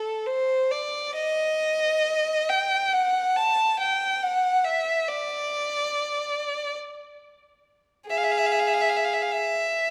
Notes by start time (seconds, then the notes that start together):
Already playing: A4
0.27 C5
0.71 D5
1.16 D#5
2.49 G5
2.93 F#5
3.36 A5
3.79 G5
4.22 F#5
4.64 E5
5.07 D5
8.09 G#4 E5
8.17 F5
8.23 E5
8.31 F5
8.37 E5
8.45 F5
8.52 E5
8.59 F5
8.67 E5
8.73 F5
8.81 E5
8.89 F5
8.96 E5
9.04 F5
9.13 E5
9.21 F5
9.32 E5